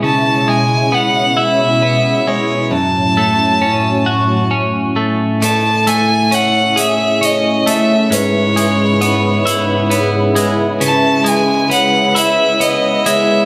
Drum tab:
HH |------|------|xxxxxx|xxxxxx|

HH |xxxxxx|